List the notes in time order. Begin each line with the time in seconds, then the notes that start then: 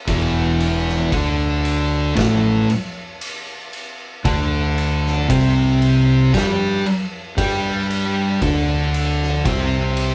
0.07 E1 E2 E3, kick, ride
0.60 ride
0.89 snare
1.11 D2 D3 D4, kick, ride
1.65 ride
2.15 A1 A2 A3, kick, snare, ride
2.70 ride
3.21 ride
3.73 ride
4.25 D2 D3 D4, kick, ride
4.78 ride
5.07 snare
5.29 C2 C3 C4, kick, ride
5.82 ride
6.34 G2 G3 G4, kick, snare, ride
6.86 ride
7.37 G2 G3 G4, kick, ride
7.91 ride
8.41 D2 D3 D4, kick, ride
8.94 ride
9.23 snare
9.45 C2 C3 C4, kick, ride
9.97 ride